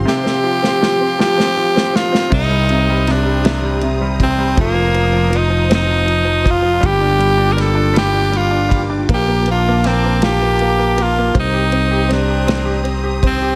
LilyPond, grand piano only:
\new Staff \with { instrumentName = "Grand piano" } { \time 6/8 \key c \dorian \tempo 4. = 53 <c f c'>16 c'16 f16 c'16 f16 c'16 f16 c'16 f16 c'16 f16 c'16 | c16 g16 c16 g16 c16 g16 c16 g16 c16 g16 c16 g16 | f16 f16 f16 f16 f16 f16 c'16 f16 f16 f16 f16 f16 | g16 d'16 g16 d'16 g16 d'16 g16 d'16 g16 d'16 g16 d'16 |
bes16 bes16 bes16 bes16 bes16 bes16 f'16 bes16 bes16 bes16 bes16 bes16 | c'16 g'16 c'16 g'16 c'16 g'16 c'16 g'16 c'16 g'16 c'16 g'16 | }